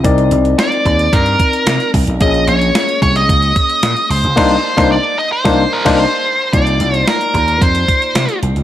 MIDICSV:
0, 0, Header, 1, 5, 480
1, 0, Start_track
1, 0, Tempo, 540541
1, 42, Time_signature, 4, 2, 24, 8
1, 7664, End_track
2, 0, Start_track
2, 0, Title_t, "Lead electric guitar"
2, 0, Program_c, 0, 29
2, 528, Note_on_c, 0, 74, 93
2, 1007, Note_on_c, 0, 70, 92
2, 1019, Note_off_c, 0, 74, 0
2, 1689, Note_off_c, 0, 70, 0
2, 1967, Note_on_c, 0, 75, 117
2, 2188, Note_off_c, 0, 75, 0
2, 2208, Note_on_c, 0, 73, 93
2, 2651, Note_off_c, 0, 73, 0
2, 2685, Note_on_c, 0, 73, 99
2, 2806, Note_off_c, 0, 73, 0
2, 2806, Note_on_c, 0, 75, 94
2, 3645, Note_off_c, 0, 75, 0
2, 3649, Note_on_c, 0, 72, 94
2, 4364, Note_off_c, 0, 72, 0
2, 4367, Note_on_c, 0, 74, 90
2, 4604, Note_off_c, 0, 74, 0
2, 4608, Note_on_c, 0, 75, 99
2, 4723, Note_off_c, 0, 75, 0
2, 4727, Note_on_c, 0, 72, 80
2, 5087, Note_on_c, 0, 70, 91
2, 5289, Note_off_c, 0, 72, 0
2, 5308, Note_off_c, 0, 70, 0
2, 5325, Note_on_c, 0, 72, 88
2, 5802, Note_off_c, 0, 72, 0
2, 5806, Note_on_c, 0, 74, 100
2, 6196, Note_off_c, 0, 74, 0
2, 6196, Note_on_c, 0, 72, 100
2, 6286, Note_on_c, 0, 70, 89
2, 6298, Note_off_c, 0, 72, 0
2, 6766, Note_on_c, 0, 72, 85
2, 6778, Note_off_c, 0, 70, 0
2, 7448, Note_off_c, 0, 72, 0
2, 7664, End_track
3, 0, Start_track
3, 0, Title_t, "Tine electric piano"
3, 0, Program_c, 1, 4
3, 30, Note_on_c, 1, 60, 78
3, 35, Note_on_c, 1, 63, 73
3, 40, Note_on_c, 1, 70, 69
3, 45, Note_on_c, 1, 74, 88
3, 1920, Note_off_c, 1, 60, 0
3, 1923, Note_off_c, 1, 63, 0
3, 1925, Note_off_c, 1, 70, 0
3, 1928, Note_off_c, 1, 74, 0
3, 1955, Note_on_c, 1, 58, 68
3, 1959, Note_on_c, 1, 61, 62
3, 1966, Note_on_c, 1, 68, 63
3, 1971, Note_on_c, 1, 73, 71
3, 3843, Note_off_c, 1, 58, 0
3, 3845, Note_off_c, 1, 61, 0
3, 3848, Note_off_c, 1, 68, 0
3, 3851, Note_off_c, 1, 73, 0
3, 3873, Note_on_c, 1, 58, 98
3, 3879, Note_on_c, 1, 62, 102
3, 3884, Note_on_c, 1, 63, 100
3, 3889, Note_on_c, 1, 72, 101
3, 4040, Note_off_c, 1, 58, 0
3, 4043, Note_off_c, 1, 62, 0
3, 4046, Note_off_c, 1, 63, 0
3, 4049, Note_off_c, 1, 72, 0
3, 4235, Note_on_c, 1, 58, 96
3, 4240, Note_on_c, 1, 62, 101
3, 4245, Note_on_c, 1, 63, 90
3, 4250, Note_on_c, 1, 72, 92
3, 4401, Note_off_c, 1, 58, 0
3, 4404, Note_off_c, 1, 62, 0
3, 4407, Note_off_c, 1, 63, 0
3, 4409, Note_off_c, 1, 72, 0
3, 4834, Note_on_c, 1, 58, 106
3, 4840, Note_on_c, 1, 62, 100
3, 4844, Note_on_c, 1, 63, 90
3, 4849, Note_on_c, 1, 72, 99
3, 5000, Note_off_c, 1, 58, 0
3, 5004, Note_off_c, 1, 62, 0
3, 5006, Note_off_c, 1, 63, 0
3, 5009, Note_off_c, 1, 72, 0
3, 5195, Note_on_c, 1, 58, 106
3, 5200, Note_on_c, 1, 62, 110
3, 5205, Note_on_c, 1, 63, 107
3, 5210, Note_on_c, 1, 72, 105
3, 5361, Note_off_c, 1, 58, 0
3, 5364, Note_off_c, 1, 62, 0
3, 5367, Note_off_c, 1, 63, 0
3, 5370, Note_off_c, 1, 72, 0
3, 5797, Note_on_c, 1, 58, 59
3, 5803, Note_on_c, 1, 63, 60
3, 5807, Note_on_c, 1, 65, 59
3, 5811, Note_on_c, 1, 74, 70
3, 7664, Note_off_c, 1, 58, 0
3, 7664, Note_off_c, 1, 63, 0
3, 7664, Note_off_c, 1, 65, 0
3, 7664, Note_off_c, 1, 74, 0
3, 7664, End_track
4, 0, Start_track
4, 0, Title_t, "Slap bass"
4, 0, Program_c, 2, 36
4, 40, Note_on_c, 2, 36, 109
4, 234, Note_off_c, 2, 36, 0
4, 280, Note_on_c, 2, 36, 85
4, 474, Note_off_c, 2, 36, 0
4, 759, Note_on_c, 2, 39, 88
4, 953, Note_off_c, 2, 39, 0
4, 1003, Note_on_c, 2, 43, 97
4, 1195, Note_off_c, 2, 43, 0
4, 1480, Note_on_c, 2, 48, 91
4, 1577, Note_off_c, 2, 48, 0
4, 1722, Note_on_c, 2, 36, 90
4, 1818, Note_off_c, 2, 36, 0
4, 1841, Note_on_c, 2, 35, 86
4, 1938, Note_off_c, 2, 35, 0
4, 1961, Note_on_c, 2, 34, 111
4, 2154, Note_off_c, 2, 34, 0
4, 2198, Note_on_c, 2, 34, 91
4, 2392, Note_off_c, 2, 34, 0
4, 2682, Note_on_c, 2, 36, 95
4, 2875, Note_off_c, 2, 36, 0
4, 2924, Note_on_c, 2, 37, 112
4, 3116, Note_off_c, 2, 37, 0
4, 3401, Note_on_c, 2, 46, 97
4, 3498, Note_off_c, 2, 46, 0
4, 3642, Note_on_c, 2, 37, 88
4, 3738, Note_off_c, 2, 37, 0
4, 3764, Note_on_c, 2, 37, 87
4, 3859, Note_off_c, 2, 37, 0
4, 3882, Note_on_c, 2, 36, 104
4, 4045, Note_off_c, 2, 36, 0
4, 4242, Note_on_c, 2, 36, 104
4, 4405, Note_off_c, 2, 36, 0
4, 4842, Note_on_c, 2, 36, 110
4, 5005, Note_off_c, 2, 36, 0
4, 5201, Note_on_c, 2, 36, 103
4, 5364, Note_off_c, 2, 36, 0
4, 5803, Note_on_c, 2, 36, 117
4, 5995, Note_off_c, 2, 36, 0
4, 6039, Note_on_c, 2, 36, 93
4, 6233, Note_off_c, 2, 36, 0
4, 6520, Note_on_c, 2, 39, 85
4, 6714, Note_off_c, 2, 39, 0
4, 6763, Note_on_c, 2, 41, 91
4, 6955, Note_off_c, 2, 41, 0
4, 7240, Note_on_c, 2, 48, 92
4, 7337, Note_off_c, 2, 48, 0
4, 7482, Note_on_c, 2, 36, 78
4, 7578, Note_off_c, 2, 36, 0
4, 7602, Note_on_c, 2, 37, 77
4, 7664, Note_off_c, 2, 37, 0
4, 7664, End_track
5, 0, Start_track
5, 0, Title_t, "Drums"
5, 39, Note_on_c, 9, 42, 89
5, 41, Note_on_c, 9, 36, 113
5, 128, Note_off_c, 9, 42, 0
5, 129, Note_off_c, 9, 36, 0
5, 159, Note_on_c, 9, 42, 36
5, 248, Note_off_c, 9, 42, 0
5, 277, Note_on_c, 9, 42, 85
5, 366, Note_off_c, 9, 42, 0
5, 400, Note_on_c, 9, 42, 47
5, 489, Note_off_c, 9, 42, 0
5, 521, Note_on_c, 9, 42, 88
5, 522, Note_on_c, 9, 38, 118
5, 609, Note_off_c, 9, 42, 0
5, 610, Note_off_c, 9, 38, 0
5, 640, Note_on_c, 9, 42, 37
5, 729, Note_off_c, 9, 42, 0
5, 760, Note_on_c, 9, 36, 80
5, 762, Note_on_c, 9, 42, 59
5, 848, Note_off_c, 9, 36, 0
5, 851, Note_off_c, 9, 42, 0
5, 881, Note_on_c, 9, 42, 43
5, 970, Note_off_c, 9, 42, 0
5, 1002, Note_on_c, 9, 36, 114
5, 1004, Note_on_c, 9, 42, 98
5, 1091, Note_off_c, 9, 36, 0
5, 1093, Note_off_c, 9, 42, 0
5, 1118, Note_on_c, 9, 42, 38
5, 1207, Note_off_c, 9, 42, 0
5, 1240, Note_on_c, 9, 42, 82
5, 1241, Note_on_c, 9, 36, 90
5, 1328, Note_off_c, 9, 42, 0
5, 1329, Note_off_c, 9, 36, 0
5, 1361, Note_on_c, 9, 42, 51
5, 1450, Note_off_c, 9, 42, 0
5, 1479, Note_on_c, 9, 42, 110
5, 1482, Note_on_c, 9, 38, 120
5, 1568, Note_off_c, 9, 42, 0
5, 1571, Note_off_c, 9, 38, 0
5, 1600, Note_on_c, 9, 42, 37
5, 1688, Note_off_c, 9, 42, 0
5, 1722, Note_on_c, 9, 36, 90
5, 1724, Note_on_c, 9, 46, 80
5, 1811, Note_off_c, 9, 36, 0
5, 1812, Note_off_c, 9, 46, 0
5, 1842, Note_on_c, 9, 42, 47
5, 1931, Note_off_c, 9, 42, 0
5, 1959, Note_on_c, 9, 42, 93
5, 1961, Note_on_c, 9, 36, 120
5, 2047, Note_off_c, 9, 42, 0
5, 2050, Note_off_c, 9, 36, 0
5, 2080, Note_on_c, 9, 42, 34
5, 2168, Note_off_c, 9, 42, 0
5, 2199, Note_on_c, 9, 42, 81
5, 2287, Note_off_c, 9, 42, 0
5, 2322, Note_on_c, 9, 42, 44
5, 2410, Note_off_c, 9, 42, 0
5, 2443, Note_on_c, 9, 42, 86
5, 2444, Note_on_c, 9, 38, 118
5, 2531, Note_off_c, 9, 42, 0
5, 2532, Note_off_c, 9, 38, 0
5, 2563, Note_on_c, 9, 42, 36
5, 2652, Note_off_c, 9, 42, 0
5, 2682, Note_on_c, 9, 36, 81
5, 2686, Note_on_c, 9, 42, 62
5, 2771, Note_off_c, 9, 36, 0
5, 2775, Note_off_c, 9, 42, 0
5, 2804, Note_on_c, 9, 42, 50
5, 2892, Note_off_c, 9, 42, 0
5, 2924, Note_on_c, 9, 36, 120
5, 2927, Note_on_c, 9, 42, 94
5, 3013, Note_off_c, 9, 36, 0
5, 3016, Note_off_c, 9, 42, 0
5, 3041, Note_on_c, 9, 42, 34
5, 3130, Note_off_c, 9, 42, 0
5, 3161, Note_on_c, 9, 42, 79
5, 3162, Note_on_c, 9, 36, 97
5, 3250, Note_off_c, 9, 36, 0
5, 3250, Note_off_c, 9, 42, 0
5, 3282, Note_on_c, 9, 42, 50
5, 3371, Note_off_c, 9, 42, 0
5, 3399, Note_on_c, 9, 42, 107
5, 3402, Note_on_c, 9, 38, 114
5, 3488, Note_off_c, 9, 42, 0
5, 3491, Note_off_c, 9, 38, 0
5, 3522, Note_on_c, 9, 42, 37
5, 3610, Note_off_c, 9, 42, 0
5, 3646, Note_on_c, 9, 46, 82
5, 3734, Note_off_c, 9, 46, 0
5, 3764, Note_on_c, 9, 42, 43
5, 3853, Note_off_c, 9, 42, 0
5, 3882, Note_on_c, 9, 36, 118
5, 3882, Note_on_c, 9, 49, 83
5, 3886, Note_on_c, 9, 38, 104
5, 3971, Note_off_c, 9, 36, 0
5, 3971, Note_off_c, 9, 49, 0
5, 3975, Note_off_c, 9, 38, 0
5, 4242, Note_on_c, 9, 36, 113
5, 4245, Note_on_c, 9, 38, 103
5, 4331, Note_off_c, 9, 36, 0
5, 4334, Note_off_c, 9, 38, 0
5, 4842, Note_on_c, 9, 36, 110
5, 4844, Note_on_c, 9, 38, 122
5, 4930, Note_off_c, 9, 36, 0
5, 4933, Note_off_c, 9, 38, 0
5, 5201, Note_on_c, 9, 49, 85
5, 5202, Note_on_c, 9, 36, 109
5, 5205, Note_on_c, 9, 38, 102
5, 5290, Note_off_c, 9, 49, 0
5, 5291, Note_off_c, 9, 36, 0
5, 5294, Note_off_c, 9, 38, 0
5, 5802, Note_on_c, 9, 36, 115
5, 5803, Note_on_c, 9, 42, 93
5, 5891, Note_off_c, 9, 36, 0
5, 5891, Note_off_c, 9, 42, 0
5, 5921, Note_on_c, 9, 42, 59
5, 6010, Note_off_c, 9, 42, 0
5, 6039, Note_on_c, 9, 42, 79
5, 6128, Note_off_c, 9, 42, 0
5, 6162, Note_on_c, 9, 42, 45
5, 6250, Note_off_c, 9, 42, 0
5, 6282, Note_on_c, 9, 42, 84
5, 6283, Note_on_c, 9, 38, 107
5, 6371, Note_off_c, 9, 42, 0
5, 6372, Note_off_c, 9, 38, 0
5, 6402, Note_on_c, 9, 42, 45
5, 6491, Note_off_c, 9, 42, 0
5, 6521, Note_on_c, 9, 36, 69
5, 6524, Note_on_c, 9, 42, 60
5, 6610, Note_off_c, 9, 36, 0
5, 6613, Note_off_c, 9, 42, 0
5, 6641, Note_on_c, 9, 42, 43
5, 6730, Note_off_c, 9, 42, 0
5, 6763, Note_on_c, 9, 36, 111
5, 6765, Note_on_c, 9, 42, 88
5, 6851, Note_off_c, 9, 36, 0
5, 6854, Note_off_c, 9, 42, 0
5, 6880, Note_on_c, 9, 42, 63
5, 6969, Note_off_c, 9, 42, 0
5, 7001, Note_on_c, 9, 36, 90
5, 7002, Note_on_c, 9, 42, 72
5, 7090, Note_off_c, 9, 36, 0
5, 7091, Note_off_c, 9, 42, 0
5, 7122, Note_on_c, 9, 42, 44
5, 7211, Note_off_c, 9, 42, 0
5, 7239, Note_on_c, 9, 42, 96
5, 7242, Note_on_c, 9, 38, 104
5, 7328, Note_off_c, 9, 42, 0
5, 7331, Note_off_c, 9, 38, 0
5, 7358, Note_on_c, 9, 42, 46
5, 7447, Note_off_c, 9, 42, 0
5, 7483, Note_on_c, 9, 42, 80
5, 7572, Note_off_c, 9, 42, 0
5, 7602, Note_on_c, 9, 42, 45
5, 7664, Note_off_c, 9, 42, 0
5, 7664, End_track
0, 0, End_of_file